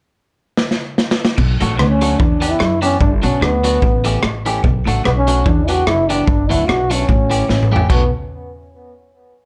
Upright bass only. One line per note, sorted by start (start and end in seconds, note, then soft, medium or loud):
1.38 1.57 B1 loud
1.61 1.79 A1 medium
1.79 2.14 D2 medium
2.20 2.54 E2 loud
2.61 2.95 F#2 medium
3.01 3.20 G1 loud
3.24 3.39 B1 medium
3.41 3.76 D2 medium
3.83 4.17 A1 loud
4.24 4.58 A1 medium
4.64 4.83 B1 loud
4.87 5.02 A1 medium
5.06 5.40 B1 loud
5.47 5.81 E2 loud
5.87 6.21 F#1 medium
6.28 6.53 G1 loud
6.51 6.66 D2 medium
6.69 7.03 B1 medium
7.09 7.43 A1 loud
7.50 7.84 A1 medium
7.90 8.11 B1 loud